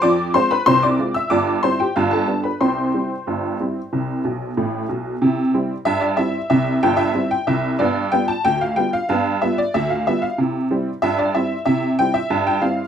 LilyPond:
<<
  \new Staff \with { instrumentName = "Honky-tonk piano" } { \time 2/4 \key c \major \tempo 4 = 93 <d'' d'''>8 <c'' c'''>16 <b' b''>16 <c'' c'''>16 <d'' d'''>8 <e'' e'''>16 | <d'' d'''>8 <c'' c'''>16 <g' g''>16 <f' f''>16 <a' a''>8 <b' b''>16 | <c'' g'' c'''>2~ | <c'' g'' c'''>4. r8 |
r4 e''16 d''16 e''8 | e''8 g''16 e''8 g''16 e''8 | d''8 g''16 a''16 g''16 f''16 g''16 f''16 | f''8 e''16 d''16 e''16 f''16 e''16 f''16 |
r4 e''16 d''16 e''8 | e''8 g''16 e''8 g''16 f''8 | }
  \new Staff \with { instrumentName = "Honky-tonk piano" } { \clef bass \time 2/4 \key c \major <f, f>8 <aes c' f'>8 <c, c>8 <aes c' f'>8 | <g,, g,>8 <g c' e'>8 <g,, g,>8 <g b d'>8 | <c, c>8 <g c' e'>8 <g,, g,>8 <g c' e'>8 | <c, c>8 <b,, b,>8 <a,, a,>8 <b,, b,>8 |
<c e'>8 <g c' e'>8 g,8 <g c' e'>8 | <c, c>8 <g,, g,>8 <g c' e'>8 <c, c>8 | <g, b>8 <g b f'>8 d,8 <g b f'>8 | <g, b>8 <g b f'>8 d,8 <g b f'>8 |
<c e'>8 <g c' e'>8 g,8 <g c' e'>8 | <c e'>8 <g c' e'>8 g,8 <g c' e'>8 | }
>>